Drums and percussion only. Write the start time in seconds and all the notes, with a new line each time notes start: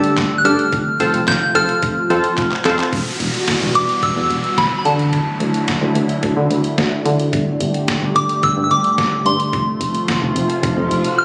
0.04 closed hi-hat
0.17 kick, snare, clap, closed hi-hat
0.45 closed hi-hat
0.59 closed hi-hat
0.72 kick, closed hi-hat
1.00 closed hi-hat
1.14 closed hi-hat
1.28 kick, snare, clap, closed hi-hat
1.55 closed hi-hat
1.69 closed hi-hat
1.83 kick, closed hi-hat
2.10 closed hi-hat
2.24 closed hi-hat
2.38 kick, clap, closed hi-hat
2.51 clap
2.65 clap, closed hi-hat
2.79 clap, closed hi-hat
2.93 kick, closed hi-hat
3.20 closed hi-hat
3.34 closed hi-hat
3.48 kick, snare, closed hi-hat
3.75 closed hi-hat
3.89 closed hi-hat
4.03 kick, closed hi-hat
4.30 closed hi-hat
4.44 closed hi-hat
4.58 kick, snare, closed hi-hat
4.85 closed hi-hat
4.99 closed hi-hat
5.13 kick, closed hi-hat
5.40 closed hi-hat
5.54 closed hi-hat
5.68 kick, snare, closed hi-hat
5.95 closed hi-hat
6.09 closed hi-hat
6.23 kick, closed hi-hat
6.51 closed hi-hat
6.64 closed hi-hat
6.78 kick, snare, closed hi-hat
7.06 closed hi-hat
7.20 closed hi-hat
7.33 kick, closed hi-hat
7.60 closed hi-hat
7.74 closed hi-hat
7.88 kick, snare, closed hi-hat
8.16 closed hi-hat
8.29 closed hi-hat
8.43 kick, closed hi-hat
8.71 closed hi-hat
8.84 closed hi-hat
8.98 kick, snare, closed hi-hat
9.26 closed hi-hat
9.40 closed hi-hat
9.53 kick, closed hi-hat
9.81 closed hi-hat
9.95 closed hi-hat
10.08 kick, snare, closed hi-hat
10.36 closed hi-hat
10.50 closed hi-hat
10.63 kick, closed hi-hat
10.91 closed hi-hat
11.04 closed hi-hat